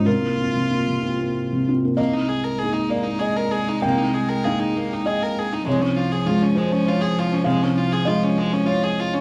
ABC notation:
X:1
M:3/4
L:1/16
Q:1/4=98
K:Ablyd
V:1 name="Felt piano"
B8 z4 | e6 d2 e4 | g4 f4 e4 | _d6 c2 d4 |
f4 e4 _d4 |]
V:2 name="Felt piano"
C,, B, [CF] C, B, C, [CF] B,2 C, [CF] B, | C,,4 [B,EA]8 | C,,4 [B,EA]8 | C,,4 [A,FA]8 |
C,,4 [A,FA]8 |]
V:3 name="Violin"
z12 | B, E A B A E B, E A B A E | B, E A B A E B, E A B A E | A, _D F A F D A, D F A F D |
A, _D F A F D A, D F A F D |]
V:4 name="Cello" clef=bass
F8- F2 z2 | A,12- | A,12 | F,12- |
F,12 |]